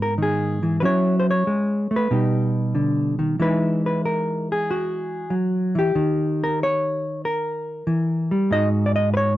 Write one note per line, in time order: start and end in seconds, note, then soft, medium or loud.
0.00 0.83 G#2 medium
0.00 0.81 G#3 medium
0.00 0.83 B3 medium
0.00 0.81 F#4 medium
0.00 0.13 A#4 medium
0.18 0.62 D#3 medium
0.22 0.80 G#4 medium
0.63 0.83 E3 medium
0.80 1.46 F#3 medium
0.80 2.08 C#4 medium
0.80 2.09 E4 soft
0.80 0.84 B4 medium
0.85 1.18 C#5 loud
1.20 1.28 C5 medium
1.31 1.92 C#5 loud
1.47 1.91 G#3 medium
1.91 2.11 A3 medium
1.96 3.41 B4 medium
2.11 3.36 B2 medium
2.11 3.37 G3 soft
2.11 2.78 D#4 soft
2.11 3.37 G4 soft
2.75 3.18 D3 medium
3.19 3.39 D#3 medium
3.40 5.74 E3 medium
3.40 5.30 G#3 medium
3.40 6.66 D#4 medium
3.40 4.70 E4 medium
3.40 3.84 B4 loud
3.86 4.04 B4 medium
4.05 4.48 A#4 medium
4.52 5.33 G#4 medium
4.71 5.76 F#4 medium
5.30 5.74 F#3 medium
5.75 5.95 E3 medium
5.75 7.04 G4 loud
5.95 7.86 D#3 medium
6.44 6.61 A#4 loud
6.63 7.25 C#5 loud
7.25 8.52 A#4 medium
7.87 8.30 E3 medium
8.31 8.51 G3 medium
8.51 9.37 G#2 medium
8.51 9.37 D#4 medium
8.51 9.37 F#4 medium
8.51 8.68 D#5 loud
8.86 8.95 D5 medium
8.96 9.11 D#5 loud
9.14 9.16 B4 medium
9.14 9.33 C#5 loud